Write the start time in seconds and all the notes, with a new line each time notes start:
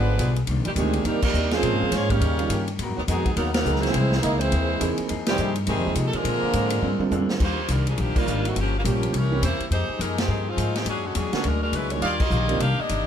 Already playing: G#1 D3 F3 G#3 B3 D4 F4 B4
0.18 B1 G3 B3 F4 G#4, hi-hat pedal, ride
0.36 ride
0.47 C2 C3 D#3 A#3, ride
0.51 D4
0.58 A#1
0.65 G1 A#2 D#3 G3 A#3 D4 G4, ride
0.75 D2 A#2 C3 D#3 G#3 A#3 C4 D4 G4 G#4, hi-hat pedal, ride
0.93 ride
1.04 F2 C3 D#3 G3 A#3 D4 D#4 A#4, ride
1.08 D4
1.22 D#3 G3 A#3 D4 D#4 A#4, kick, crash
1.34 D#2 C3 D#3 A#3 D4, hi-hat pedal
1.51 F3 G#3 A#3 C4 C#4 F4 G#4 C5, snare, ride
1.62 A#2 F3 G#3 C#4, ride
1.72 G#2
1.82 F2
1.92 G#2 A#2 F3 G#3 A#3 C#4 F4 G#4 C#5, snare, hi-hat pedal, ride
2.10 C#3 D#3 G3 A#3 C#4 D#4 G4 A#4, kick, ride
2.20 D#2 D#3 A#3 C#4 G4, ride
2.38 D#3 G3 A#3 C#4 F4, ride
2.49 G2 D#3 A#3 C#4 G4, hi-hat pedal, ride
2.68 ride
2.79 G#2 G#3 B3 F#4, ride
2.83 A#4
2.88 F#2
2.96 D#2 B2 D#3 F#3 A#3 B3 F#4
3.07 F2 B2 D#3 F#3 G#3 B3 D#4 F#4 G#4, hi-hat pedal, ride
3.11 A#4
3.25 kick, ride
3.35 D#2 D#3 F#3 G#3 A#3 B3 D#4 F#4 A#4, ride
3.40 A#4
3.53 D#3 F#3 A#3 B3 D#4 A#4, snare, ride
3.65 C#2 F#3 G#3 A#3 B3 D#4 F#4 G#4 A#4, hi-hat pedal
3.75 snare
3.81 E3 G#3 A#3 C4 E4 G#4 C5, ride
3.85 snare
3.93 C2 C3 G#3 A#3 E4, ride
4.12 snare
4.21 C#2 C3 G#3 A#3 D#4 E4 G#4 D#5, hi-hat pedal, ride
4.38 E3 G#3 A#3 C4 E4 G#4 C5, ride
4.50 D#2 C3 G#3 A#3 E4, ride
4.80 E2 C3 E3 G#3 A#3 C4 D#4 E4 G#4, hi-hat pedal, ride
4.97 muted upright bass stroke, ride
5.07 F2 F3 A#3 D#4 G#4, ride
5.26 C3 D#3 G3 G#3 C4 G4, snare, ride
5.37 G2 F3 A#3 D#4 G#4, hi-hat pedal
5.55 ride
5.66 G#2 C3 D#3 F3 G3 G#3 A#3 C4 D#4 G#4, ride
5.77 F2
5.85 D#2 F3 G#3 A#3 D#4 G4
5.95 C3 F3 A#3 D#4 G#4, hi-hat pedal, ride
6.07 A4
6.13 D3 F3 G#3 A#3 D4 F4 A#4, muted upright bass stroke, ride
6.24 A#2 G#3 C4 D4, ride
6.42 muted upright bass stroke
6.53 G#2 A#2 G#3 C4 D4, hi-hat pedal, ride
6.70 ride
6.81 G2 A#2 G#3 C4 D4, high tom
6.99 D3 G#3 A#3 C4 F4, muted upright bass stroke, high tom
7.11 F2 A#2 G#3 C4 D4, hi-hat pedal, high tom
7.29 snare
7.40 D#2 D#3 G3 A#3 D4 F4 G4 C5, kick, crash
7.68 C2 D#3 G3 D4 F4 A#4, hi-hat pedal, ride
7.87 F3 A#3 D4 G#4, ride
7.97 A#1 D#3 F3 G3 A#3 D4 F4, ride
8.01 G4
8.15 D#3 G3 A#3 D4 F4, muted upright bass stroke, kick, crash
8.25 G#1 D#3 G3 D4 F4, hi-hat pedal
8.45 D#3 A3 C4 F#4, ride
8.54 G1 G2 F3 A#3, ride
8.58 F3 A#3 C#4 G4
8.78 G3 A#3 C#4 F4
8.84 A#1 G2 F3 G3 A#3 C#4 G4, hi-hat pedal, ride
8.89 F3 A#3 C#4 G4
9.03 ride
9.12 C2 C3 E3 A#3 C#4, ride
9.16 G3 C#4 E4 A#4
9.32 E3 A#3 C4 C#4 G4
9.40 E2 C3 E3 A#3 C#4, hi-hat pedal, ride
9.45 A#3 E4 G4 C5
9.60 muted upright bass stroke, ride
9.69 F2 F3 G#3 A#3 D#4 G#4 C5, ride
9.74 G4
9.89 muted upright bass stroke
9.99 F#2 F3 A#3 D#4 G4 G#4 A#4, hi-hat pedal, ride
10.03 G#3 D#4
10.18 D#3 G#3 C4 G4, snare, ride
10.27 G2 F3 A#3 D#4 G#4
10.49 G#3 C4 D#4 F4
10.55 G#2 F3 A#3 D#4 G#4, hi-hat pedal, ride
10.75 D#3 G#3 C4 G4, snare, ride
10.85 F#2 A#2 F#3 G#3 C#4 D4 G#4, ride
11.06 D3 G#3 C#4 F#4
11.14 E2 A#2 F#3 G#3 C#4 D4 G#4, hi-hat pedal, ride
11.32 D3 F#3 G#3 A#3 C#4 D4 F#4 G#4, muted upright bass stroke, snare, ride
11.43 D2 A#2 F#3 G#3 D4 F#4 A#4, ride
11.63 G#3 D4 F#4 A#4
11.72 C#2 A#2 F#3 G#3 C#4 D4 E4 B4, hi-hat pedal, ride
11.90 D#3 G3 G#3 A#3 D4 F4 F#4 C#5, ride
12.01 D#2 D#3 G3 A#3 D4 F4 G4 D5 D#5 F5, ride
12.20 A#3 F4 G4 D#5, kick, crash
12.30 A#1 D#3 G3 D4 F4, hi-hat pedal
12.48 D#3 A#3 C4 D4 G4, ride
12.60 C2 C3 D#3 A#3 D4 G4 A#4 F5, ride
12.78 A#3 D4 G4 D#5, muted upright bass stroke
12.88 G1 C3 D#3 A#3 D4, hi-hat pedal, ride